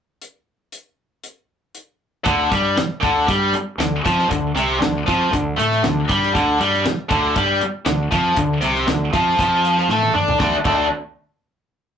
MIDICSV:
0, 0, Header, 1, 6, 480
1, 0, Start_track
1, 0, Key_signature, -1, "minor"
1, 0, Tempo, 508906
1, 205, Time_signature, 4, 2, 24, 8
1, 11299, End_track
2, 0, Start_track
2, 0, Title_t, "Distorted electric guitar"
2, 0, Program_c, 0, 30
2, 2120, Note_on_c, 0, 50, 98
2, 2362, Note_off_c, 0, 50, 0
2, 2362, Note_on_c, 0, 55, 100
2, 2604, Note_off_c, 0, 55, 0
2, 2841, Note_on_c, 0, 50, 107
2, 3081, Note_on_c, 0, 55, 101
2, 3084, Note_off_c, 0, 50, 0
2, 3325, Note_off_c, 0, 55, 0
2, 3574, Note_on_c, 0, 50, 75
2, 3771, Note_off_c, 0, 50, 0
2, 3820, Note_on_c, 0, 53, 94
2, 4053, Note_off_c, 0, 53, 0
2, 4057, Note_on_c, 0, 50, 74
2, 4253, Note_off_c, 0, 50, 0
2, 4296, Note_on_c, 0, 48, 101
2, 4526, Note_off_c, 0, 48, 0
2, 4529, Note_on_c, 0, 50, 72
2, 4729, Note_off_c, 0, 50, 0
2, 4774, Note_on_c, 0, 53, 106
2, 5012, Note_off_c, 0, 53, 0
2, 5019, Note_on_c, 0, 50, 73
2, 5214, Note_off_c, 0, 50, 0
2, 5250, Note_on_c, 0, 57, 103
2, 5490, Note_off_c, 0, 57, 0
2, 5491, Note_on_c, 0, 50, 76
2, 5689, Note_off_c, 0, 50, 0
2, 5736, Note_on_c, 0, 55, 98
2, 5964, Note_on_c, 0, 50, 105
2, 5972, Note_off_c, 0, 55, 0
2, 6206, Note_off_c, 0, 50, 0
2, 6216, Note_on_c, 0, 55, 95
2, 6452, Note_off_c, 0, 55, 0
2, 6689, Note_on_c, 0, 50, 111
2, 6927, Note_off_c, 0, 50, 0
2, 6929, Note_on_c, 0, 55, 107
2, 7167, Note_off_c, 0, 55, 0
2, 7408, Note_on_c, 0, 50, 76
2, 7604, Note_off_c, 0, 50, 0
2, 7651, Note_on_c, 0, 53, 101
2, 7886, Note_off_c, 0, 53, 0
2, 7895, Note_on_c, 0, 50, 74
2, 8087, Note_off_c, 0, 50, 0
2, 8119, Note_on_c, 0, 48, 91
2, 8359, Note_off_c, 0, 48, 0
2, 8373, Note_on_c, 0, 50, 76
2, 8565, Note_off_c, 0, 50, 0
2, 8610, Note_on_c, 0, 53, 107
2, 8843, Note_off_c, 0, 53, 0
2, 8858, Note_on_c, 0, 53, 104
2, 9326, Note_off_c, 0, 53, 0
2, 9337, Note_on_c, 0, 57, 102
2, 9560, Note_off_c, 0, 57, 0
2, 9564, Note_on_c, 0, 62, 95
2, 9796, Note_on_c, 0, 50, 82
2, 9798, Note_off_c, 0, 62, 0
2, 9802, Note_on_c, 0, 57, 85
2, 9811, Note_on_c, 0, 62, 100
2, 9945, Note_off_c, 0, 50, 0
2, 9948, Note_off_c, 0, 57, 0
2, 9953, Note_off_c, 0, 62, 0
2, 10041, Note_on_c, 0, 50, 83
2, 10045, Note_on_c, 0, 57, 88
2, 10053, Note_on_c, 0, 62, 102
2, 10235, Note_off_c, 0, 50, 0
2, 10237, Note_off_c, 0, 57, 0
2, 10241, Note_off_c, 0, 62, 0
2, 11299, End_track
3, 0, Start_track
3, 0, Title_t, "Fingered electric bass"
3, 0, Program_c, 1, 33
3, 2134, Note_on_c, 1, 38, 86
3, 2359, Note_off_c, 1, 38, 0
3, 2367, Note_on_c, 1, 43, 85
3, 2596, Note_off_c, 1, 43, 0
3, 2856, Note_on_c, 1, 38, 90
3, 3082, Note_off_c, 1, 38, 0
3, 3096, Note_on_c, 1, 43, 93
3, 3322, Note_off_c, 1, 43, 0
3, 3565, Note_on_c, 1, 38, 84
3, 3797, Note_off_c, 1, 38, 0
3, 3822, Note_on_c, 1, 41, 96
3, 4046, Note_off_c, 1, 41, 0
3, 4062, Note_on_c, 1, 38, 75
3, 4286, Note_off_c, 1, 38, 0
3, 4293, Note_on_c, 1, 36, 90
3, 4522, Note_off_c, 1, 36, 0
3, 4533, Note_on_c, 1, 38, 85
3, 4762, Note_off_c, 1, 38, 0
3, 4786, Note_on_c, 1, 41, 96
3, 5009, Note_off_c, 1, 41, 0
3, 5030, Note_on_c, 1, 38, 82
3, 5251, Note_off_c, 1, 38, 0
3, 5263, Note_on_c, 1, 45, 90
3, 5487, Note_off_c, 1, 45, 0
3, 5508, Note_on_c, 1, 38, 85
3, 5729, Note_off_c, 1, 38, 0
3, 5746, Note_on_c, 1, 43, 99
3, 5968, Note_off_c, 1, 43, 0
3, 5985, Note_on_c, 1, 38, 92
3, 6207, Note_off_c, 1, 38, 0
3, 6223, Note_on_c, 1, 43, 91
3, 6445, Note_off_c, 1, 43, 0
3, 6702, Note_on_c, 1, 38, 96
3, 6924, Note_off_c, 1, 38, 0
3, 6943, Note_on_c, 1, 43, 100
3, 7164, Note_off_c, 1, 43, 0
3, 7420, Note_on_c, 1, 38, 86
3, 7642, Note_off_c, 1, 38, 0
3, 7660, Note_on_c, 1, 41, 93
3, 7881, Note_off_c, 1, 41, 0
3, 7895, Note_on_c, 1, 38, 78
3, 8118, Note_off_c, 1, 38, 0
3, 8132, Note_on_c, 1, 36, 92
3, 8355, Note_off_c, 1, 36, 0
3, 8367, Note_on_c, 1, 38, 82
3, 8593, Note_off_c, 1, 38, 0
3, 8617, Note_on_c, 1, 41, 89
3, 8837, Note_off_c, 1, 41, 0
3, 8852, Note_on_c, 1, 41, 99
3, 9296, Note_off_c, 1, 41, 0
3, 9317, Note_on_c, 1, 45, 97
3, 9545, Note_off_c, 1, 45, 0
3, 9554, Note_on_c, 1, 50, 93
3, 9783, Note_off_c, 1, 50, 0
3, 9809, Note_on_c, 1, 38, 93
3, 9942, Note_off_c, 1, 38, 0
3, 10045, Note_on_c, 1, 38, 91
3, 10268, Note_off_c, 1, 38, 0
3, 11299, End_track
4, 0, Start_track
4, 0, Title_t, "Muted distorted electric guitar strokes"
4, 2604, Note_on_c, 9, 29, 56
4, 2698, Note_off_c, 9, 29, 0
4, 3335, Note_on_c, 9, 29, 58
4, 3429, Note_off_c, 9, 29, 0
4, 6446, Note_on_c, 9, 29, 62
4, 6540, Note_off_c, 9, 29, 0
4, 7169, Note_on_c, 9, 29, 57
4, 7263, Note_off_c, 9, 29, 0
4, 11299, End_track
5, 0, Start_track
5, 0, Title_t, "Muted fingered electric bass strokes"
5, 2603, Note_on_c, 9, 29, 42
5, 2698, Note_off_c, 9, 29, 0
5, 3332, Note_on_c, 9, 29, 38
5, 3426, Note_off_c, 9, 29, 0
5, 6461, Note_on_c, 9, 29, 38
5, 6555, Note_off_c, 9, 29, 0
5, 7190, Note_on_c, 9, 29, 41
5, 7284, Note_off_c, 9, 29, 0
5, 11299, End_track
6, 0, Start_track
6, 0, Title_t, "Drums"
6, 203, Note_on_c, 9, 42, 57
6, 297, Note_off_c, 9, 42, 0
6, 682, Note_on_c, 9, 42, 57
6, 777, Note_off_c, 9, 42, 0
6, 1166, Note_on_c, 9, 42, 60
6, 1260, Note_off_c, 9, 42, 0
6, 1647, Note_on_c, 9, 42, 59
6, 1741, Note_off_c, 9, 42, 0
6, 2127, Note_on_c, 9, 42, 94
6, 2131, Note_on_c, 9, 36, 105
6, 2221, Note_off_c, 9, 42, 0
6, 2226, Note_off_c, 9, 36, 0
6, 2374, Note_on_c, 9, 36, 101
6, 2375, Note_on_c, 9, 42, 67
6, 2468, Note_off_c, 9, 36, 0
6, 2469, Note_off_c, 9, 42, 0
6, 2616, Note_on_c, 9, 42, 93
6, 2618, Note_on_c, 9, 38, 115
6, 2710, Note_off_c, 9, 42, 0
6, 2712, Note_off_c, 9, 38, 0
6, 2855, Note_on_c, 9, 42, 70
6, 2857, Note_on_c, 9, 36, 107
6, 2950, Note_off_c, 9, 42, 0
6, 2951, Note_off_c, 9, 36, 0
6, 3098, Note_on_c, 9, 36, 108
6, 3098, Note_on_c, 9, 42, 100
6, 3192, Note_off_c, 9, 36, 0
6, 3192, Note_off_c, 9, 42, 0
6, 3336, Note_on_c, 9, 42, 76
6, 3431, Note_off_c, 9, 42, 0
6, 3584, Note_on_c, 9, 42, 101
6, 3586, Note_on_c, 9, 38, 111
6, 3678, Note_off_c, 9, 42, 0
6, 3680, Note_off_c, 9, 38, 0
6, 3826, Note_on_c, 9, 36, 99
6, 3833, Note_on_c, 9, 42, 69
6, 3920, Note_off_c, 9, 36, 0
6, 3927, Note_off_c, 9, 42, 0
6, 3952, Note_on_c, 9, 38, 35
6, 4046, Note_off_c, 9, 38, 0
6, 4064, Note_on_c, 9, 42, 95
6, 4066, Note_on_c, 9, 36, 88
6, 4158, Note_off_c, 9, 42, 0
6, 4161, Note_off_c, 9, 36, 0
6, 4311, Note_on_c, 9, 42, 68
6, 4405, Note_off_c, 9, 42, 0
6, 4545, Note_on_c, 9, 42, 90
6, 4547, Note_on_c, 9, 38, 110
6, 4640, Note_off_c, 9, 42, 0
6, 4642, Note_off_c, 9, 38, 0
6, 4790, Note_on_c, 9, 36, 97
6, 4801, Note_on_c, 9, 42, 65
6, 4884, Note_off_c, 9, 36, 0
6, 4895, Note_off_c, 9, 42, 0
6, 5030, Note_on_c, 9, 36, 94
6, 5031, Note_on_c, 9, 42, 83
6, 5124, Note_off_c, 9, 36, 0
6, 5125, Note_off_c, 9, 42, 0
6, 5276, Note_on_c, 9, 42, 66
6, 5370, Note_off_c, 9, 42, 0
6, 5392, Note_on_c, 9, 38, 31
6, 5486, Note_off_c, 9, 38, 0
6, 5508, Note_on_c, 9, 42, 87
6, 5510, Note_on_c, 9, 38, 110
6, 5602, Note_off_c, 9, 42, 0
6, 5604, Note_off_c, 9, 38, 0
6, 5748, Note_on_c, 9, 36, 101
6, 5749, Note_on_c, 9, 42, 67
6, 5842, Note_off_c, 9, 36, 0
6, 5844, Note_off_c, 9, 42, 0
6, 5875, Note_on_c, 9, 38, 34
6, 5969, Note_off_c, 9, 38, 0
6, 5989, Note_on_c, 9, 36, 101
6, 5998, Note_on_c, 9, 42, 87
6, 6084, Note_off_c, 9, 36, 0
6, 6092, Note_off_c, 9, 42, 0
6, 6231, Note_on_c, 9, 42, 68
6, 6325, Note_off_c, 9, 42, 0
6, 6353, Note_on_c, 9, 38, 32
6, 6448, Note_off_c, 9, 38, 0
6, 6466, Note_on_c, 9, 42, 89
6, 6468, Note_on_c, 9, 38, 117
6, 6560, Note_off_c, 9, 42, 0
6, 6562, Note_off_c, 9, 38, 0
6, 6701, Note_on_c, 9, 42, 71
6, 6703, Note_on_c, 9, 36, 102
6, 6796, Note_off_c, 9, 42, 0
6, 6797, Note_off_c, 9, 36, 0
6, 6939, Note_on_c, 9, 42, 91
6, 6943, Note_on_c, 9, 36, 104
6, 7033, Note_off_c, 9, 42, 0
6, 7038, Note_off_c, 9, 36, 0
6, 7180, Note_on_c, 9, 42, 72
6, 7275, Note_off_c, 9, 42, 0
6, 7412, Note_on_c, 9, 42, 97
6, 7414, Note_on_c, 9, 38, 114
6, 7507, Note_off_c, 9, 42, 0
6, 7509, Note_off_c, 9, 38, 0
6, 7659, Note_on_c, 9, 36, 95
6, 7660, Note_on_c, 9, 42, 67
6, 7754, Note_off_c, 9, 36, 0
6, 7754, Note_off_c, 9, 42, 0
6, 7889, Note_on_c, 9, 42, 100
6, 7896, Note_on_c, 9, 36, 89
6, 7984, Note_off_c, 9, 42, 0
6, 7991, Note_off_c, 9, 36, 0
6, 8126, Note_on_c, 9, 42, 68
6, 8220, Note_off_c, 9, 42, 0
6, 8253, Note_on_c, 9, 38, 32
6, 8347, Note_off_c, 9, 38, 0
6, 8372, Note_on_c, 9, 42, 101
6, 8374, Note_on_c, 9, 38, 110
6, 8467, Note_off_c, 9, 42, 0
6, 8469, Note_off_c, 9, 38, 0
6, 8616, Note_on_c, 9, 36, 101
6, 8616, Note_on_c, 9, 42, 69
6, 8710, Note_off_c, 9, 42, 0
6, 8711, Note_off_c, 9, 36, 0
6, 8855, Note_on_c, 9, 36, 105
6, 8859, Note_on_c, 9, 42, 93
6, 8950, Note_off_c, 9, 36, 0
6, 8954, Note_off_c, 9, 42, 0
6, 9100, Note_on_c, 9, 42, 70
6, 9194, Note_off_c, 9, 42, 0
6, 9224, Note_on_c, 9, 38, 31
6, 9318, Note_off_c, 9, 38, 0
6, 9332, Note_on_c, 9, 38, 60
6, 9426, Note_off_c, 9, 38, 0
6, 9456, Note_on_c, 9, 48, 65
6, 9550, Note_off_c, 9, 48, 0
6, 9574, Note_on_c, 9, 45, 84
6, 9669, Note_off_c, 9, 45, 0
6, 9699, Note_on_c, 9, 43, 94
6, 9793, Note_off_c, 9, 43, 0
6, 9809, Note_on_c, 9, 36, 102
6, 9809, Note_on_c, 9, 38, 84
6, 9903, Note_off_c, 9, 38, 0
6, 9904, Note_off_c, 9, 36, 0
6, 10046, Note_on_c, 9, 49, 85
6, 10047, Note_on_c, 9, 36, 108
6, 10140, Note_off_c, 9, 49, 0
6, 10142, Note_off_c, 9, 36, 0
6, 11299, End_track
0, 0, End_of_file